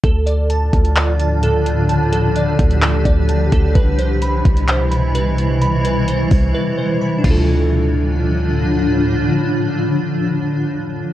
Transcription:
<<
  \new Staff \with { instrumentName = "Synth keys" } { \time 4/4 \key d \dorian \tempo 4 = 129 a'8 d''8 a''4 d''8 a''8 a'4 | a''8 a'8 d''4 a'8 d''8 a''8 a'8 | b'8 c''8 b''4 c''8 b''8 b'4 | b''8 b'8 c''4 b'8 c''8 b''8 <d' f' a'>8~ |
<d' f' a'>1~ | <d' f' a'>1 | }
  \new Staff \with { instrumentName = "Ambient pad" } { \clef bass \time 4/4 \key d \dorian << { f'1 | g'1 | e'1~ | e'2.~ e'8 <a, d f d' f'>8~ |
<a, d f d' f'>1~ | <a, d f d' f'>1 | } \\ { <a, d f d'>1~ | <a, d f d'>1 | <b, c e g>1~ | <b, c e g>2.~ <b, c e g>8 r8 |
r1 | r1 | } >> }
  \new Staff \with { instrumentName = "808-style bass" } { \clef bass \time 4/4 \key d \dorian d,4. d,2~ d,8~ | d,4. d,4 d,4 d,8 | c,4. c,2~ c,8~ | c,4. c,8 r4. d,8~ |
d,1 | r1 | }
  \new DrumStaff \with { instrumentName = "Drums" } \drummode { \time 4/4 <hh bd>8 hh8 hh8 <hh bd>16 hh16 <hc hh>8 hh8 hh8 hh8 | hh8 hh8 hh8 <hh bd>16 hh16 <hc hh>8 <hh bd>8 hh8 <hh bd>8 | <hh bd>8 hh8 hh8 <hh bd>16 hh16 <hc hh>8 hh8 hh8 hh8 | hh8 hh8 hh8 <hho bd>8 r4 r8 <cymc bd>8 |
r4 r4 r4 r4 | r4 r4 r4 r4 | }
>>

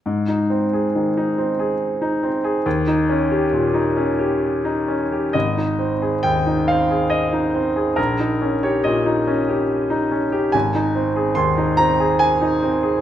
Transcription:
\new Staff \with { instrumentName = "Grand piano" } { \time 3/4 \key aes \major \tempo 4 = 70 << { r2. | r2. | ees''4 g''8 f''8 ees''4 | bes'8. des''16 ees''4. r8 |
aes''4 c'''8 bes''8 aes''4 | } \\ { aes,16 ees'16 c'16 aes'16 ees16 ees'16 c'16 aes'8 ees'16 c'16 aes'16 | ees,16 ees'16 des'16 g'16 bes,16 ees'16 des'16 g'8 ees'16 des'16 g'16 | aes,,16 ees'16 c'16 aes'16 ees,16 ees'16 c'16 aes'8 ees'16 c'16 aes'16 | bes,,16 ees'16 des'16 g'16 bes,16 ees'16 des'16 g'8 ees'16 des'16 g'16 |
aes,,16 ees'16 c'16 aes'16 ees,16 ees'16 c'16 aes'8 ees'16 c'16 aes'16 | } >> }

